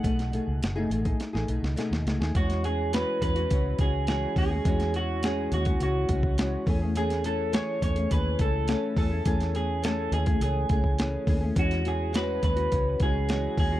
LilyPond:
<<
  \new Staff \with { instrumentName = "Clean electric guitar" } { \time 4/4 \key e \major \tempo 4 = 104 fis''2~ fis''8 r4. | fis'8 gis'8 b'8 b'4 gis'8 gis'8 gis'8~ | gis'8 fis'8 gis'8 fis'8 fis'4. r8 | gis'8 a'8 cis''8 cis''8 b'8 a'4 a'8~ |
a'8 gis'8 a'8 gis'8 gis'4. r8 | fis'8 gis'8 b'8 b'4 gis'4 gis'8 | }
  \new Staff \with { instrumentName = "Nylon-string guitar" } { \time 4/4 \key e \major <b, a dis' gis'>8 <b, a dis' gis'>8. <b, a dis' gis'>16 <b, a dis' gis'>16 <a dis' gis'>8 <a dis' gis'>16 <b, a dis' gis'>8 <b, a dis' gis'>8 <b, a dis' gis'>16 <a dis' gis'>16 | <e gis cis' fis'>8 <e gis cis' fis'>8 <e gis cis' fis'>8 <e gis cis' fis'>16 <gis cis' fis'>16 <e gis cis' fis'>8 <e gis cis' fis'>8 <e gis cis' fis'>8 <e gis cis' fis'>16 <gis cis' fis'>16 | <e gis cis' fis'>8 <e gis cis' fis'>8 <e gis cis' fis'>8 <e gis cis' fis'>16 <gis cis' fis'>16 <e gis cis' fis'>8 <e gis cis' fis'>8 <e gis cis' fis'>8 <e a cis' gis'>16 <a cis' gis'>16 | <e a cis' gis'>8 <e a cis' gis'>8 <e a cis' gis'>8 <e a cis' gis'>16 <a cis' gis'>16 <e a cis' gis'>8 <e a cis' gis'>8 <e a cis' gis'>8 <e a cis' gis'>16 <a cis' gis'>16 |
<e a cis' gis'>8 <e a cis' gis'>8 <e a cis' gis'>8 <e a cis' gis'>16 <a cis' gis'>16 <e a cis' gis'>8 <e a cis' gis'>8 <e a cis' gis'>8 <e a cis' gis'>16 <a cis' gis'>16 | <e gis cis' fis'>8 <e gis cis' fis'>8 <e gis cis' fis'>8 <e gis cis' fis'>16 <gis cis' fis'>16 <e gis cis' fis'>8 <e gis cis' fis'>8 <e gis cis' fis'>8 <e gis cis' fis'>16 <gis cis' fis'>16 | }
  \new Staff \with { instrumentName = "Fingered electric bass" } { \clef bass \time 4/4 \key e \major b,,8. cis,16 fis,,8 a,,8 r16 a,,16 b,,16 cis,16 r16 dis,16 cis,16 dis,16 | e,4~ e,16 r16 e,8 cis,8 cis,4 dis,8 | e,4. dis,8 cis,8 cis,4 e,8~ | e,4. e,8 dis,8 cis,8. r16 e,8 |
e,4. dis,8 cis,8 cis,4 dis,8 | e,4. dis,8 cis,8 cis,4 dis,8 | }
  \new DrumStaff \with { instrumentName = "Drums" } \drummode { \time 4/4 <hh bd>16 <hh sn>16 hh8 <hh sn>8 hh16 <hh bd>16 <hh sn>16 sn16 hh16 sn16 <hh sn>16 sn16 <hh sn>16 sn16 | <hh bd>16 <hh sn>16 hh8 <hh sn>8 <hh bd>16 hh16 <hh bd>8 <hh bd>8 <hh sn>8 <hho bd>8 | <hh bd>16 <hh sn>16 hh8 <hh sn>8 hh16 <hh bd>16 hh8 <hh bd>16 bd16 <hh sn>8 <hho bd>8 | hh16 <hh sn>16 hh8 <hh sn>8 <hh bd>16 hh16 <hh bd>8 <hh bd>8 <hh sn>8 <hho bd>8 |
<hh bd>16 <hh sn>16 hh8 <hh sn>8 hh16 <hh bd>16 hh8 <hh bd>16 bd16 <hh sn>8 <hho bd>8 | <hh bd>16 <hh sn>16 hh8 <hh sn>8 <hh bd>16 hh16 <hh bd>8 <hh bd>8 <hh sn>8 <hho bd>8 | }
>>